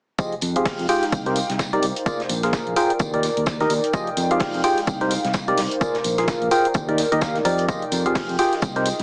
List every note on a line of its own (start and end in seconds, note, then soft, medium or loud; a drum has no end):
0.18 0.34 F3 medium
0.18 2.06 D#4 medium
0.18 0.34 F4 medium
0.18 0.34 G4 medium
0.18 0.34 G#4 medium
0.18 0.34 D#5 medium
0.18 kick loud
0.18 closed hi-hat soft
0.18 tambourine medium
0.32 closed hi-hat soft
0.41 0.71 F2 medium
0.41 open hi-hat loud
0.41 tambourine medium
0.47 1.52 F5 medium
0.56 0.87 F3 medium
0.56 0.87 F4 medium
0.56 0.87 G4 medium
0.56 0.87 G#4 medium
0.56 0.87 F5 medium
0.56 closed hi-hat medium
0.62 2.06 G5 loud
0.62 kick loud
0.62 snare loud
0.62 closed hi-hat medium
0.66 open hi-hat medium
0.79 0.85 F2 medium
0.79 closed hi-hat soft
0.88 1.05 F4 medium
0.88 1.05 G4 medium
0.88 1.05 G#4 medium
0.88 1.05 G5 loud
0.88 snare soft
0.88 open hi-hat medium
0.88 tambourine medium
1.02 snare soft
1.02 closed hi-hat soft
1.12 1.41 C2 medium
1.12 kick loud
1.12 closed hi-hat medium
1.12 tambourine medium
1.26 1.38 C3 medium
1.26 1.38 D#4 medium
1.26 1.38 G4 medium
1.26 1.38 A#4 medium
1.26 1.38 C5 medium
1.26 closed hi-hat soft
1.36 4.33 A#4 medium
1.36 open hi-hat medium
1.36 tambourine medium
1.50 1.77 C2 medium
1.50 snare medium
1.50 closed hi-hat soft
1.56 2.45 C5 medium
1.56 kick medium
1.56 snare medium
1.56 closed hi-hat medium
1.56 tambourine medium
1.73 1.85 C3 medium
1.73 1.85 D#4 medium
1.73 1.85 G4 medium
1.73 1.85 A#4 medium
1.73 1.85 D5 loud
1.73 closed hi-hat soft
1.82 1.91 C2 medium
1.82 open hi-hat loud
1.82 tambourine medium
1.96 closed hi-hat soft
1.96 closed hi-hat medium
2.06 2.22 A#3 medium
2.06 2.22 F4 medium
2.06 3.39 F4 medium
2.06 2.22 G#4 medium
2.06 2.22 A#4 medium
2.06 2.22 D5 medium
2.06 kick loud
2.06 closed hi-hat soft
2.06 tambourine medium
2.20 snare medium
2.20 closed hi-hat soft
2.29 2.58 A#1 medium
2.29 4.33 D5 medium
2.29 open hi-hat loud
2.29 tambourine medium
2.43 2.74 A#3 medium
2.43 2.74 F4 medium
2.43 2.74 G#4 medium
2.43 2.74 A#4 medium
2.43 2.74 F5 medium
2.43 snare soft
2.43 closed hi-hat soft
2.53 kick loud
2.53 snare loud
2.53 closed hi-hat soft
2.53 tambourine medium
2.67 2.73 A#1 medium
2.67 closed hi-hat soft
2.76 2.92 F4 loud
2.76 2.92 G#4 medium
2.76 2.92 A#4 medium
2.76 2.92 G5 loud
2.76 open hi-hat loud
2.76 tambourine medium
2.90 closed hi-hat soft
2.99 3.28 D#2 medium
2.99 5.81 D#4 medium
2.99 kick loud
2.99 closed hi-hat soft
2.99 tambourine medium
3.14 3.26 D#3 medium
3.14 3.26 D#4 medium
3.14 3.26 G4 medium
3.14 3.26 A#4 medium
3.14 3.26 D5 medium
3.14 closed hi-hat soft
3.23 snare soft
3.23 open hi-hat loud
3.23 tambourine medium
3.37 3.64 D#2 medium
3.37 closed hi-hat soft
3.43 5.81 G5 medium
3.43 kick loud
3.43 snare loud
3.43 closed hi-hat medium
3.43 tambourine medium
3.60 3.73 D#3 medium
3.60 3.73 D#4 medium
3.60 3.73 G4 medium
3.60 3.73 A#4 medium
3.60 3.73 D#5 medium
3.60 snare soft
3.60 closed hi-hat soft
3.70 3.78 D#2 medium
3.70 open hi-hat loud
3.70 tambourine medium
3.84 closed hi-hat soft
3.93 4.09 F3 medium
3.93 4.09 F4 medium
3.93 4.09 G4 medium
3.93 4.09 G#4 medium
3.93 4.09 D#5 medium
3.93 kick loud
3.93 closed hi-hat soft
3.93 tambourine medium
4.07 4.87 G#3 medium
4.07 closed hi-hat soft
4.17 4.46 F2 medium
4.17 open hi-hat loud
4.17 tambourine medium
4.31 4.62 F3 medium
4.31 4.62 F4 medium
4.31 4.62 G4 medium
4.31 4.62 G#4 medium
4.31 4.62 F5 medium
4.31 closed hi-hat soft
4.37 5.27 F5 medium
4.37 kick loud
4.37 snare loud
4.37 closed hi-hat soft
4.37 open hi-hat medium
4.54 4.60 F2 medium
4.54 closed hi-hat soft
4.64 4.79 F4 loud
4.64 4.80 G4 medium
4.64 4.80 G#4 medium
4.64 4.80 G5 loud
4.64 snare soft
4.64 open hi-hat loud
4.64 tambourine medium
4.77 snare soft
4.77 closed hi-hat soft
4.87 5.16 C2 medium
4.87 kick loud
4.87 closed hi-hat soft
4.87 tambourine medium
5.01 5.13 C3 medium
5.01 5.13 D#4 medium
5.01 5.13 G4 medium
5.01 5.13 A#4 medium
5.01 5.13 C5 medium
5.01 closed hi-hat soft
5.11 open hi-hat loud
5.11 tambourine medium
5.25 5.52 C2 medium
5.25 snare medium
5.25 closed hi-hat soft
5.30 8.08 A#4 medium
5.30 6.20 C5 medium
5.30 kick medium
5.30 snare loud
5.30 closed hi-hat medium
5.30 tambourine medium
5.48 5.60 C3 medium
5.48 5.60 D#4 medium
5.48 5.60 G4 medium
5.48 5.60 A#4 medium
5.48 5.60 D5 medium
5.48 closed hi-hat soft
5.58 5.66 C2 medium
5.58 snare medium
5.58 open hi-hat loud
5.58 open hi-hat medium
5.71 closed hi-hat soft
5.81 5.97 A#3 medium
5.81 5.97 F4 medium
5.81 7.14 F4 medium
5.81 5.97 G#4 medium
5.81 5.97 A#4 medium
5.81 5.97 D5 medium
5.81 kick loud
5.81 closed hi-hat soft
5.81 tambourine medium
5.94 snare medium
5.94 closed hi-hat soft
6.04 6.33 A#1 medium
6.04 open hi-hat loud
6.04 tambourine medium
6.18 6.49 A#3 medium
6.18 6.49 F4 medium
6.18 6.49 G#4 medium
6.18 6.49 A#4 medium
6.18 7.69 D5 medium
6.18 6.49 F5 medium
6.18 snare soft
6.18 closed hi-hat soft
6.28 kick loud
6.28 snare loud
6.28 closed hi-hat soft
6.28 tambourine medium
6.42 6.48 A#1 medium
6.42 closed hi-hat soft
6.51 6.67 F4 loud
6.51 6.67 G#4 medium
6.51 6.67 A#4 medium
6.51 6.67 G5 loud
6.51 open hi-hat loud
6.51 tambourine medium
6.65 closed hi-hat soft
6.74 7.03 D#2 medium
6.74 8.08 D#4 medium
6.74 kick loud
6.74 closed hi-hat soft
6.74 tambourine medium
6.88 7.01 D#3 medium
6.88 7.01 D#4 medium
6.88 7.01 G4 medium
6.88 7.01 A#4 medium
6.88 7.01 D5 medium
6.88 closed hi-hat soft
6.98 snare soft
6.98 open hi-hat loud
6.98 tambourine medium
7.12 7.39 D#2 medium
7.12 7.20 D#3 medium
7.12 7.20 D#4 medium
7.12 7.20 G4 medium
7.12 7.20 A#4 medium
7.12 7.20 D#5 loud
7.12 closed hi-hat soft
7.18 9.03 G5 medium
7.18 kick medium
7.18 closed hi-hat soft
7.18 tambourine medium
7.22 snare loud
7.35 snare soft
7.35 closed hi-hat soft
7.45 7.74 F2 medium
7.45 7.66 F3 medium
7.45 7.66 D#4 medium
7.45 7.66 G4 medium
7.45 7.66 A#4 medium
7.45 7.66 D5 loud
7.45 open hi-hat loud
7.45 tambourine medium
7.58 closed hi-hat soft
7.68 7.84 F3 medium
7.68 7.84 F4 medium
7.68 9.01 F4 medium
7.68 kick loud
7.68 closed hi-hat soft
7.68 tambourine medium
7.82 closed hi-hat soft
7.92 8.20 F2 medium
7.92 open hi-hat loud
7.92 tambourine medium
8.06 8.37 F3 medium
8.06 8.37 F4 medium
8.06 8.37 G4 medium
8.06 8.37 G#4 medium
8.06 8.37 F5 medium
8.06 closed hi-hat soft
8.11 9.01 D#5 medium
8.11 snare loud
8.15 kick loud
8.15 closed hi-hat soft
8.15 open hi-hat medium
8.29 8.35 F2 medium
8.29 closed hi-hat soft
8.39 8.54 F4 loud
8.39 8.54 G4 medium
8.39 8.54 G#4 medium
8.39 8.54 G5 loud
8.39 snare soft
8.39 open hi-hat loud
8.39 tambourine medium
8.53 snare soft
8.53 closed hi-hat soft
8.62 8.91 C2 medium
8.62 9.03 D#4 medium
8.62 kick loud
8.62 closed hi-hat soft
8.62 tambourine medium
8.76 8.88 C3 medium
8.76 8.88 D#4 medium
8.76 8.88 G4 medium
8.76 8.88 A#4 medium
8.76 8.88 C5 medium
8.76 closed hi-hat soft
8.86 open hi-hat loud
8.86 tambourine medium
8.95 9.03 A#4 medium
9.00 9.03 C2 medium
9.00 snare medium
9.00 closed hi-hat soft